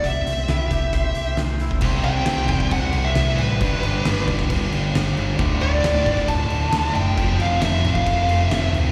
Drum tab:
CC |----------------|x-x-x-x-x-x-x-x-|x-x-x-x-x-x-x-x-|x-x-x-x-x-x-x-x-|
HH |x-x-x-x-x-x-x-x-|----------------|----------------|----------------|
SD |----o-------o---|----o-------o---|----o--o----o---|----o--o----o---|
BD |o-----o-o------o|o-----ooo-------|o-----ooo-------|o-----ooo-------|

CC |x-x-x-x-x-x-x-x-|
HH |----------------|
SD |----o-------o---|
BD |o------oo-------|